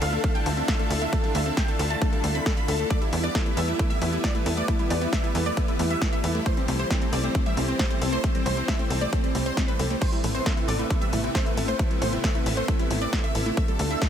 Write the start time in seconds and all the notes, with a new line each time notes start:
Already playing: D3 D4 E4 F4 A4
0.01 D2 A4 F5, open hi-hat
0.13 A3 A4, closed hi-hat
0.24 A3 A4, kick, closed hi-hat
0.35 G3 G5, closed hi-hat
0.46 D2 A3 A4, open hi-hat
0.57 C4 A4, closed hi-hat
0.68 A4 E5, kick, snare, closed hi-hat
0.79 A3 A4, closed hi-hat
0.90 D2 A4, open hi-hat
1.02 A3 E5, closed hi-hat
1.13 A3 A4, kick, closed hi-hat
1.24 G3 A4, closed hi-hat
1.35 D2 A3 E5, open hi-hat
1.46 C4 A4, closed hi-hat
1.57 A4 G5, kick, snare, closed hi-hat
1.68 A3 A4, closed hi-hat
1.79 D2 A4, open hi-hat
1.90 A3 A5, closed hi-hat
2.02 A3 A4, kick, closed hi-hat
2.13 G3 A4, closed hi-hat
2.24 D2 A3 A4, open hi-hat
2.35 C4 B5, closed hi-hat
2.46 A4, kick, snare, closed hi-hat
2.57 A3 B5, closed hi-hat
2.68 D2 A4, open hi-hat
2.79 A3 A4
2.90 E3 G3 A3 B3 D5, kick, closed hi-hat
3.01 G3 E4, closed hi-hat
3.12 E2 A3 E4, open hi-hat
3.24 B3 D5, closed hi-hat
3.35 E4 A4, kick, snare, closed hi-hat
3.46 A3 E4, closed hi-hat
3.57 E2 A4 E5, open hi-hat
3.68 A3 E4, closed hi-hat
3.79 A3 E4, kick, closed hi-hat
3.90 G3 E5, closed hi-hat
4.01 E2 A3 E4, open hi-hat
4.12 B3 E4, closed hi-hat
4.24 A4 D5, kick, snare, closed hi-hat
4.35 A3 E4, closed hi-hat
4.46 E2 E4 A4, open hi-hat
4.57 A3 D5, closed hi-hat
4.68 A3 E4, kick, closed hi-hat
4.79 G3 E4, closed hi-hat
4.90 E2 A3 D5, open hi-hat
5.02 B3 E4, closed hi-hat
5.13 A4 E5, kick, snare, closed hi-hat
5.24 A3 E4, closed hi-hat
5.35 E2 E4 A4, open hi-hat
5.46 A3 D5, closed hi-hat
5.57 A3 E4, kick, closed hi-hat
5.68 G3 E4, closed hi-hat
5.79 E2 A3 E4, open hi-hat
5.90 B3 E5, closed hi-hat
6.02 E4 A4, kick, snare, closed hi-hat
6.13 A3 E5, closed hi-hat
6.24 E2 E4 A4, open hi-hat
6.35 A3 E4, closed hi-hat
6.46 A3 C4 C5, kick, closed hi-hat
6.57 G3 C4, closed hi-hat
6.68 C2 A3 C4, open hi-hat
6.79 C4 C5, closed hi-hat
6.90 C4 A4, kick, snare, closed hi-hat
7.02 A3 C4, closed hi-hat
7.13 C2 A4 D5, open hi-hat
7.24 A3 C4, closed hi-hat
7.35 A3 C4, kick, closed hi-hat
7.46 G3 E5, closed hi-hat
7.57 C2 A3 C4, open hi-hat
7.68 C4, closed hi-hat
7.79 A4 C5, kick, snare, closed hi-hat
7.90 A3 C4, closed hi-hat
8.01 C2 C4 A4, open hi-hat
8.12 A3 C5, closed hi-hat
8.24 A3 C4, kick, closed hi-hat
8.35 G3 C4, closed hi-hat
8.46 C2 A3 C5, open hi-hat
8.57 C4, closed hi-hat
8.68 A4 E5, kick, snare, closed hi-hat
8.79 A3 C4, closed hi-hat
8.90 C2 C4 A4, open hi-hat
9.01 A3 D5
9.13 A3 C4, kick, closed hi-hat
9.24 G3 C4, closed hi-hat
9.35 C2 A3 C4, open hi-hat
9.46 C4 C5, closed hi-hat
9.57 C4 A4, kick, snare, closed hi-hat
9.68 A3 B4, closed hi-hat
9.79 C2 C4 A4, open hi-hat
9.90 A3 C4, closed hi-hat
10.01 C3 A3 B3 C5, kick, closed hi-hat, crash
10.12 G3 E4, closed hi-hat
10.24 A1 A3 E4, open hi-hat
10.35 C4 C5, closed hi-hat
10.46 E4 A4, kick, snare, closed hi-hat
10.57 A3 E4, closed hi-hat
10.68 A1 A4 D5, open hi-hat
10.79 A3 E4, closed hi-hat
10.90 A3 E4, kick, closed hi-hat
11.01 G3 E5, closed hi-hat
11.12 A1 A3 E4, open hi-hat
11.23 C4 E4, closed hi-hat
11.35 A4 C5, kick, snare, closed hi-hat
11.46 A3 E4, closed hi-hat
11.57 A1 E4 A4, open hi-hat
11.68 A3 C5
11.79 A3 E4, kick, closed hi-hat
11.90 G3 E4, closed hi-hat
12.01 A1 A3 C5, open hi-hat
12.13 C4 E4, closed hi-hat
12.24 A4 E5, kick, snare, closed hi-hat
12.35 A3 E4, closed hi-hat
12.46 A1 E4 A4, open hi-hat
12.57 A3 C5, closed hi-hat
12.68 A3 E4, kick, closed hi-hat
12.79 G3 E4, closed hi-hat
12.90 A1 A3 E4, open hi-hat
13.01 C4 D5, closed hi-hat
13.13 E4 A4, kick, snare, closed hi-hat
13.24 A3 E5, closed hi-hat
13.35 A1 E4 A4, open hi-hat
13.46 A3 E4, closed hi-hat
13.57 D3 A3 D4 E4 F4 A4 E5, kick, closed hi-hat
13.68 G3 A4, closed hi-hat
13.79 D2 A3 A4, open hi-hat
13.90 C4 E5
14.02 A4, kick, snare, closed hi-hat